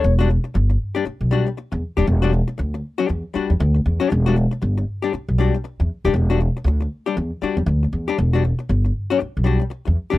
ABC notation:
X:1
M:4/4
L:1/16
Q:"Swing 16ths" 1/4=118
K:Em
V:1 name="Hollow-body jazz guitar"
^c [G,DF]2 z4 [G,DG]2 z [G,DF] z4 [G,DG]- | [G,DG] [G,DF]2 z4 [G,DG]2 z [G,DF] z4 [G,DG]- | [G,DG] [G,DF]2 z4 [G,DG]2 z [G,DF] z4 [G,DG]- | [G,DG] [G,DF]2 z4 [G,DG]2 z [G,DF] z4 [G,DG]- |
[G,DG] [G,DF]2 z4 [G,DG]2 z [G,DF] z4 [G,DG] |]
V:2 name="Upright bass" clef=bass
E,,,3 z G,,,2 z3 B,,,2 z2 E,, z ^D,,, | E,,,3 z D,,2 z2 E,, z2 E,, D,,2 E,, z | E,,,3 z G,,,2 z3 B,,,2 z2 E,, z ^D,,, | E,,,3 z D,,2 z2 E,, z2 E,, D,,2 E,, z |
E,,,3 z G,,,2 z3 B,,,2 z2 E,, z ^D,,, |]